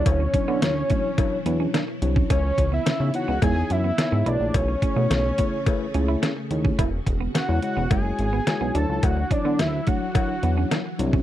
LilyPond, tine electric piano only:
\new Staff \with { instrumentName = "Tine electric piano" } { \time 4/4 \key d \lydian \tempo 4 = 107 <fis d' e' cis''>16 r16 <fis d' e' cis''>8. r16 <fis d' e' cis''>16 r16 <fis d' e' cis''>16 r16 <fis d' e' cis''>8. r16 <fis d' e' cis''>8 | r4 r16 <b dis' e' cis''>16 <b dis' e' cis''>16 r16 <b dis' e' cis''>8. r16 <b dis' e' cis''>8 <a e' gis' cis''>8~ | <a e' gis' cis''>16 r16 <a e' gis' cis''>8. r16 <a e' gis' cis''>16 r16 <a e' gis' b'>16 r16 <a e' gis' cis''>8. r16 <a e' gis' cis''>8 | r4 r16 <gis e' fis' cis''>16 <gis e' fis' cis''>16 r16 <gis e' fis' cis''>8. r16 <gis e' fis' cis''>8 <fis d' e' cis''>8~ |
<fis d' e' cis''>16 r16 <fis d' e' cis''>8. r16 <fis d' e' cis''>16 r16 <fis d' e' cis''>16 r16 <fis d' e' cis''>8. r16 <fis d' e' cis''>8 | }